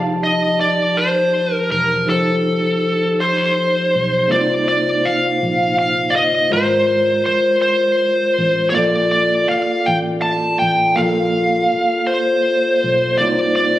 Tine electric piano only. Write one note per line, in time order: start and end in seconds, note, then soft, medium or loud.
0.00 2.03 F3 medium
0.00 2.04 D#4 soft
0.00 2.05 G4 medium
0.00 2.09 A5 medium
2.06 4.25 F3 medium
2.06 4.26 D#4 medium
2.06 4.27 G4 medium
2.12 4.28 C5 medium
4.27 6.47 C3 medium
4.27 6.48 A#3 medium
4.27 6.49 D#4 medium
4.32 6.49 F4 medium
4.32 6.50 C5 medium
6.50 8.70 G#3 medium
6.50 8.71 F4 medium
6.54 8.72 A#4 medium
6.54 6.61 B4 medium
6.63 8.76 C5 medium
8.72 10.92 A#3 medium
8.72 10.93 F4 medium
8.76 10.94 A4 medium
8.76 10.95 D5 medium
10.96 13.15 A#3 medium
10.96 13.16 F4 medium
11.00 13.17 A4 medium
11.00 13.18 F5 medium
13.18 13.79 C3 medium
13.18 13.79 A#3 medium
13.18 13.79 D#4 medium
13.23 13.79 F4 medium
13.23 13.29 C#5 medium
13.31 13.79 C5 medium